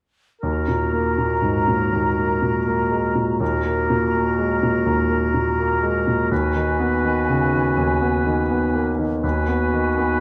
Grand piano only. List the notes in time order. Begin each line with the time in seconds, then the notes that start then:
0.43 D#2
0.68 A#2
0.93 A#3
1.18 A#2
1.42 G#2
1.68 A#2
1.92 D#2
2.17 A#3
2.42 A#2
2.67 A#3
2.91 G#3
3.15 A#2
3.40 D#2
3.65 A#3
3.90 A#2
4.15 A#3
4.38 G#3
4.63 A#2
4.86 D#2
5.10 A#3
5.34 A#2
5.59 A#3
5.83 G#3
6.07 A#2
6.31 D#2
6.56 D#3
6.79 B3
7.04 D#3
7.29 C#3
7.53 D#3
7.77 D#2
8.01 B3
8.26 D#3
8.50 B3
8.74 A#3
8.99 D#3
9.23 D#2
9.48 B3
9.73 D#3
9.98 B3